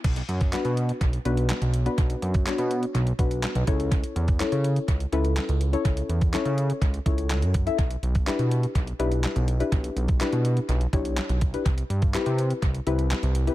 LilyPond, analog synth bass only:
\new Staff \with { instrumentName = "Analog synth bass" } { \clef bass \time 4/4 \key b \minor \tempo 4 = 124 b,,8 fis,8. b,8. b,,8 b,,8. b,,8. | b,,8 fis,8. b,8. b,,8 b,,8. b,,16 cis,8~ | cis,8 e,8. cis8. cis,8 cis,8. cis,8. | cis,8 e,8. cis8. cis,8 cis,8. fis,8. |
b,,8 b,,8. b,8. b,,8 b,,8. b,,8. | b,,8 b,,8. b,8. b,,8 b,,8. b,,8. | c,8 g,8. c8. c,8 c,8. c,8. | }